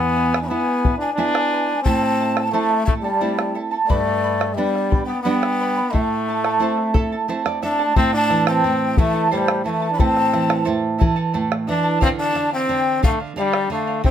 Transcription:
Already playing: nylon-string guitar E2, trombone B3, charango E4 G#4 B4 E5 G#5, quena G#5
0.00 bombo rim
0.16 charango E4 B4 E5 G#5
0.33 charango E4 B4 G#5, bombo rim
0.42 trombone D4, quena B5
0.47 nylon-string guitar G#3 B3 E4, trombone B3, charango E4 B4 E5 G#5, quena A5
0.54 quena G#5
0.68 bombo rim
0.84 charango E4 B4 E5 G#5, bombo low
0.98 trombone D4, quena G#5, charango G#5
1.02 charango E4 B4
1.14 nylon-string guitar G#3, trombone D4, charango G#4, quena G#5
1.18 nylon-string guitar B3 E4, charango E4 B4 E5 G#5
1.35 bombo rim
1.52 charango E4 B4 E5 G#5
1.69 charango E4 B4 G#5
1.83 nylon-string guitar A2, trombone C4, charango E4 A4 E5, quena A5, bombo low
1.87 charango A5
2.02 bombo rim
2.20 charango E4 A4 E5 A5
2.37 charango E4 A4 A5, bombo rim
2.46 trombone C4, quena A5
2.50 trombone A3, nylon-string guitar A3 C4 E4, charango E4 C5 E5, quena E5
2.54 charango A4 A5
2.70 bombo rim
2.86 trombone A3, charango E4 A4 E5 A5, quena E5, bombo low
3.01 trombone G3, charango A4 A5, quena D5
3.06 charango E4
3.21 nylon-string guitar A3 C4 E4, charango E4 A4 E5 A5
3.39 bombo rim
3.55 charango E4 A4 E5 A5
3.71 charango E4 A4 A5
3.87 nylon-string guitar G2, trombone A3, charango G4 B4 D5 G5 B5, quena D5, bombo low
4.07 bombo rim
4.22 charango B4 D5 G5 B5
4.39 charango B4 D5 B5, bombo rim
4.54 trombone G3, nylon-string guitar G3 B3 D4, charango B4 D5 G5 B5, quena D5 E5
4.75 bombo rim
4.90 charango B4 D5 G5 B5, bombo low
5.04 trombone B3, quena G5, charango B5
5.09 charango B4 D5
5.22 nylon-string guitar G3 B3 D4, trombone B3, charango G4 B4 D5 G5 B5, quena G5
5.43 bombo rim
5.60 charango B4 D5 G5 B5
5.77 charango B4 D5 B5
5.91 nylon-string guitar A2, trombone A3, charango E4 E5, quena E5, bombo low
5.95 charango A4 A5
6.28 charango E4 A4 E5 A5
6.44 charango E4 A4 A5, bombo rim
6.60 nylon-string guitar A3 C4 E4, charango E4 A4 C5 E5 A5
6.78 bombo rim
6.94 charango E4 A4 E5 A5, nylon-string guitar A4, bombo rim, bombo low
7.12 charango E4 A4 A5
7.28 nylon-string guitar A3 C4 E4 C5, charango E4 A4 E5 A5
7.46 nylon-string guitar D5, bombo rim
7.62 trombone D4, charango E4 A4 E5 A5, nylon-string guitar E5, quena A5, bombo rim
7.79 charango E4 A4 A5, bombo rim
7.96 nylon-string guitar A2, trombone C4, charango E4 A4 C5 E5 A5, quena A5, bombo low
8.13 trombone D4, quena A5, bombo rim
8.30 nylon-string guitar E3, charango E4 A4 E5 A5, bombo rim
8.47 trombone C4, charango E4 A4 A5, quena G5, bombo rim
8.64 nylon-string guitar A2, charango E4 A4 E5 A5
8.97 nylon-string guitar E3, trombone A3, charango E4 A4 E5 A5, quena E5, bombo low
9.14 charango E4 A4 A5
9.31 nylon-string guitar A2, trombone G3, charango E4 A4 C5 E5 A5, quena D5
9.38 quena C5
9.48 bombo rim
9.64 nylon-string guitar E3, trombone A3, charango E4 A4 E5 A5, quena F5
9.70 quena E5
9.82 charango E4 A4 A5
9.91 trombone D4, quena B5
9.99 nylon-string guitar A2, trombone C4, charango E4 A4 E5 A5, quena A5, bombo low
10.17 bombo rim
10.32 nylon-string guitar E3, charango E4 A4 E5 A5, bombo rim
10.49 charango E4 A4 A5, bombo rim
10.65 nylon-string guitar A2, charango E4 A4 C5 E5 A5
10.98 nylon-string guitar E3, charango E4 A4 E5 A5, bombo low
11.16 charango E4 A4 A5
11.34 nylon-string guitar A2, charango E4 A4 E5 A5
11.52 bombo rim
11.67 nylon-string guitar E3, trombone D4, charango E4 A4 E5 A5, quena A5
11.83 charango E4 A4 A5
12.00 nylon-string guitar D3, trombone C4, charango A4 D5 F5, quena F5, bombo low
12.19 trombone D4, quena A5, bombo rim
12.34 nylon-string guitar D3, charango A4 D5 F5, bombo rim
12.51 trombone C4, charango D5 F5, quena G5
12.69 nylon-string guitar D3, charango A4 D5 F5
13.02 nylon-string guitar D3, trombone A3, charango A4 D5 F5, quena F5, bombo low
13.20 charango D5 F5
13.36 nylon-string guitar D3, trombone G3, charango A4 D5 F5, quena E5
13.41 quena D5
13.54 bombo rim
13.70 nylon-string guitar D3, trombone A3, charango A4 D5 F5, quena F5
13.87 charango D5 F5
14.04 nylon-string guitar C3, trombone C4, charango E4 C5 E5 G5, quena G5, bombo low

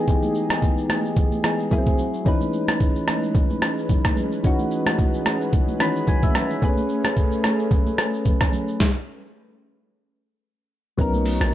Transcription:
Already playing: synth keys E3 B3 D#4 G4 G#4, analog synth pad G#3 D#4 G#4
0.08 kick, shaker
0.23 high conga, shaker
0.35 shaker
0.49 cross-stick, high conga, shaker
0.62 kick, shaker
0.77 shaker
0.89 cross-stick, high conga, shaker
1.05 shaker
1.17 kick, low conga, shaker
1.32 high conga, shaker
1.44 synth keys E3 B3 D#4 G#4, cross-stick, shaker
1.60 shaker
1.71 synth keys F#3 A#3 E4 G#4, analog synth pad C4 F#4, kick, low conga, shaker
1.78 synth keys C4
1.86 kick, high conga, shaker
1.98 low conga, shaker
2.14 shaker
2.25 synth keys E3 C#4 D#4 B4, analog synth pad C#4 D#4 B4, kick, shaker
2.41 high conga, shaker
2.53 shaker
2.68 cross-stick, high conga, shaker
2.80 kick, shaker
2.96 shaker
3.08 cross-stick, high conga, shaker
3.23 shaker
3.35 kick, low conga, shaker
3.50 high conga, shaker
3.62 cross-stick, shaker
3.78 shaker
3.89 kick, low conga, shaker
4.04 kick, cross-stick, high conga, shaker
4.16 low conga, shaker
4.32 shaker
4.43 synth keys E3 C#4 D#4 F#4, analog synth pad G#4, kick, shaker
4.59 high conga, shaker
4.71 shaker
4.86 cross-stick, high conga, shaker
4.99 kick, shaker
5.14 shaker
5.26 cross-stick, high conga, shaker
5.41 shaker
5.53 kick, low conga, shaker
5.68 high conga, shaker
5.80 synth keys D#3 E3 C#4 B4 B5, cross-stick, shaker
5.96 shaker
6.07 synth keys G#5, kick, low conga, shaker
6.23 synth keys E5, kick, high conga, shaker
6.34 cross-stick, low conga, shaker
6.50 shaker
6.61 synth keys A3 B3 G#4 B4, analog synth pad A3 C#4 G#4, kick, shaker
6.69 synth keys C#4
6.77 high conga, shaker
6.89 shaker
7.04 cross-stick, high conga, shaker
7.17 kick, shaker
7.32 shaker
7.44 cross-stick, high conga, shaker
7.59 shaker
7.71 kick, low conga, shaker
7.86 high conga, shaker
7.98 cross-stick, shaker
8.14 shaker
8.25 kick, low conga, shaker
8.40 kick, cross-stick, high conga, shaker
8.53 low conga, shaker
8.68 shaker
8.80 kick, snare
10.97 log drum bass B1, synth keys F#3 B3 C#4 D#4 A#4, analog synth pad A#4 D#5 C#6, kick, shaker
11.13 high conga, shaker
11.25 open hi-hat, shaker
11.40 log drum bass A#1, cross-stick, high conga, shaker

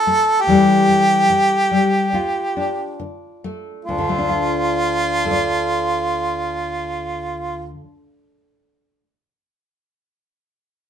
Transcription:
Already playing: nylon-string guitar F3 C4 F4, harmonica A4
0.07 nylon-string guitar A3
0.42 harmonica G4
0.47 nylon-string guitar E2 E3 G3 A3
0.89 nylon-string guitar A3
1.30 nylon-string guitar E3
1.71 nylon-string guitar G3
2.13 nylon-string guitar D2 F4
2.57 nylon-string guitar D4
3.00 nylon-string guitar D3
3.44 nylon-string guitar A3
3.85 nylon-string guitar D2, harmonica F4
3.98 nylon-string guitar D3
4.09 nylon-string guitar A3
4.18 nylon-string guitar D4
4.29 nylon-string guitar F4
5.25 nylon-string guitar A4
5.31 nylon-string guitar D5

